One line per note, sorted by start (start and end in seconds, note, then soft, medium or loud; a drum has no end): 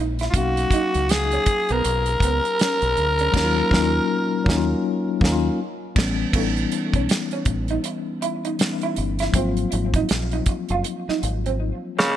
0.00 0.27 A#1 medium
0.00 0.29 G#3 medium
0.00 0.29 A#3 medium
0.00 0.30 C4 medium
0.00 0.14 D#4 medium
0.00 0.32 E4 medium
0.00 0.31 D#5 medium
0.19 0.31 E4 medium
0.19 snare soft
0.19 closed hi-hat soft
0.30 3.29 F#3 medium
0.30 3.30 A#3 medium
0.30 0.37 F4 medium
0.30 kick medium
0.30 closed hi-hat medium
0.34 0.64 B1 loud
0.34 3.30 C#4 medium
0.34 3.31 D#4 medium
0.34 1.13 F#4 medium
0.34 3.32 F5 medium
0.57 closed hi-hat soft
0.71 0.89 D#4 medium
0.71 kick medium
0.71 closed hi-hat medium
0.94 1.37 C#2 medium
0.94 closed hi-hat soft
1.09 1.74 G#4 loud
1.09 snare loud
1.09 closed hi-hat medium
1.32 1.44 C#4 medium
1.32 closed hi-hat soft
1.46 muted fingered electric bass stroke soft
1.46 muted clean electric guitar stroke soft
1.46 kick medium
1.46 closed hi-hat medium
1.69 1.82 B1 medium
1.69 1.81 B3 medium
1.69 5.60 A#4 loud
1.69 closed hi-hat soft
1.84 2.15 B1 loud
1.84 closed hi-hat medium
2.06 closed hi-hat soft
2.20 2.39 C#2 medium
2.20 2.39 B3 medium
2.20 kick medium
2.20 closed hi-hat medium
2.45 closed hi-hat soft
2.59 2.77 C#4 medium
2.59 snare loud
2.59 closed hi-hat medium
2.82 2.94 B1 medium
2.82 closed hi-hat soft
2.97 3.27 D2 medium
2.97 muted clean electric guitar stroke soft
2.97 closed hi-hat soft
3.19 3.31 C#4 medium
3.19 closed hi-hat soft
3.32 3.61 D#2 loud
3.32 3.60 F#3 loud
3.32 3.60 A#3 loud
3.32 kick loud
3.32 crash medium
3.36 3.62 C#4 loud
3.36 3.63 D#4 loud
3.36 snare medium
3.44 3.67 F4 loud
3.69 3.98 D#2 loud
3.69 3.97 F#3 loud
3.69 3.98 A#3 medium
3.69 kick medium
3.74 3.99 C#4 loud
3.74 4.00 D#4 medium
3.74 snare loud
3.82 4.04 F4 loud
4.44 4.73 D#2 loud
4.44 4.72 F#3 medium
4.44 4.73 A#3 loud
4.44 kick loud
4.48 4.74 C#4 loud
4.48 4.75 D#4 loud
4.48 snare loud
4.57 4.79 F4 medium
5.20 5.48 D#2 loud
5.20 5.47 F#3 medium
5.20 5.48 A#3 loud
5.20 kick loud
5.24 5.50 C#4 loud
5.24 5.51 D#4 loud
5.24 snare loud
5.32 5.54 F4 loud
5.95 6.23 A1 loud
5.95 6.22 E3 medium
5.95 6.23 G3 medium
5.95 6.23 B3 medium
5.95 6.24 C#4 medium
5.95 kick loud
5.95 snare loud
5.95 crash medium
6.32 6.64 A1 loud
6.32 8.54 E3 medium
6.32 8.55 G3 medium
6.32 6.51 A3 medium
6.32 8.55 B3 medium
6.32 kick medium
6.32 crash medium
6.36 8.56 C#4 medium
6.36 8.57 D#4 medium
6.57 closed hi-hat soft
6.72 muted clean electric guitar stroke soft
6.72 closed hi-hat medium
6.93 7.06 B1 medium
6.93 7.06 C#4 medium
6.93 kick medium
6.93 closed hi-hat soft
7.09 snare loud
7.09 closed hi-hat medium
7.31 7.43 C#4 medium
7.31 closed hi-hat soft
7.45 7.77 A1 medium
7.45 muted clean electric guitar stroke soft
7.45 kick medium
7.45 closed hi-hat medium
7.68 7.81 D#4 medium
7.68 closed hi-hat soft
7.84 muted clean electric guitar stroke soft
7.84 closed hi-hat medium
8.22 8.38 E4 medium
8.22 closed hi-hat medium
8.45 8.55 D#4 medium
8.45 closed hi-hat soft
8.58 9.34 E3 medium
8.58 9.34 G3 medium
8.58 9.34 B3 soft
8.58 9.35 C#4 medium
8.58 9.35 D#4 medium
8.58 snare loud
8.58 closed hi-hat medium
8.81 8.93 E4 medium
8.81 closed hi-hat soft
8.96 9.27 G1 medium
8.96 muted clean electric guitar stroke soft
8.96 closed hi-hat medium
9.19 9.31 E4 medium
9.19 snare soft
9.19 closed hi-hat soft
9.32 9.64 G#1 medium
9.32 12.17 F3 medium
9.32 12.17 F#3 medium
9.32 12.17 A#3 medium
9.32 9.51 C4 medium
9.32 kick loud
9.32 closed hi-hat medium
9.36 12.17 C4 medium
9.36 12.17 F4 loud
9.57 closed hi-hat soft
9.72 10.03 G#1 loud
9.72 muted clean electric guitar stroke soft
9.72 closed hi-hat medium
9.94 10.06 D#4 medium
9.94 kick medium
9.94 closed hi-hat soft
10.09 10.40 A#1 medium
10.09 snare loud
10.09 closed hi-hat medium
10.31 10.43 D#4 medium
10.31 closed hi-hat soft
10.46 muted clean electric guitar stroke soft
10.46 kick medium
10.46 closed hi-hat medium
10.69 10.82 F#1 medium
10.69 10.82 F4 medium
10.69 closed hi-hat soft
10.84 closed hi-hat medium
11.08 11.19 D#4 medium
11.08 muted fingered electric bass stroke soft
11.08 snare soft
11.23 11.71 G#1 medium
11.23 muted clean electric guitar stroke soft
11.23 closed hi-hat medium
11.46 11.56 C4 medium
11.46 closed hi-hat soft
11.99 12.17 C#3 loud
11.99 12.14 A#3 medium
11.99 snare medium